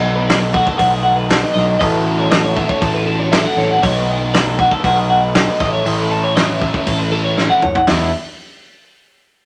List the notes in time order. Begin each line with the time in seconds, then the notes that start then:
Already playing: B1 B2 F#3 A3 D#4 F#4
0.02 D#5
0.16 B4
0.28 B4, snare, open hi-hat
0.41 A4
0.54 B2 F#3 A3 D#4 F#4, kick
0.66 A4, kick
0.78 B1 F#4, kick, open hi-hat
0.91 G#4
1.03 F#4
1.16 B4
1.28 B2 F#3 A3 D#4 F#4 A4, snare, open hi-hat
1.41 B4
1.54 B1 D#5, snare
1.67 C#5
1.79 A1 A3 C#4 F#4 A4 D#5, kick, open hi-hat
1.92 B4
2.05 A4
2.18 C#5
2.30 D#5, snare, open hi-hat
2.43 C#5
2.55 A3 C#4 F#4 A4 E5, kick
2.69 C#5, kick
2.82 A1 A4, kick, open hi-hat
2.94 B4
3.06 A4
3.20 C#5
3.32 A3 C#4 F#4 A4 E5, snare, open hi-hat
3.45 F#5
3.57 A1 C#5, snare
3.71 F#5
3.82 B1 B2 F#3 A3 D#4 F#4 C#5, kick, open hi-hat
3.96 B4
4.08 D#5
4.21 B4
4.34 B4, snare, open hi-hat
4.47 A4
4.58 B2 F#3 A3 D#4 F#4, kick
4.71 A4, kick
4.84 B1 F#4, kick, open hi-hat
4.97 G#4
5.10 F#4
5.22 B4
5.34 B2 F#3 A3 D#4 F#4 A4, snare, open hi-hat
5.48 B4
5.59 A1 A2 E3 A3 C#4 E4 D#5, kick, snare
5.73 C#5
5.85 A1 D#5, open hi-hat
5.98 B4
6.11 A4
6.24 C#5
6.35 A2 E3 A3 C#4 E4 D#5, snare, open hi-hat
6.48 C#5
6.61 E5, kick
6.73 C#5, kick
6.87 A1 A4, kick, open hi-hat
6.99 B4
7.11 A2 E3 A3 C#4 E4 A4
7.24 C#5
7.37 E5, snare
7.50 F#5
7.62 F#1 C#5, mid tom
7.75 F#5, floor tom
7.87 E2 E3 G#3 B3 E4, snare, floor tom, open hi-hat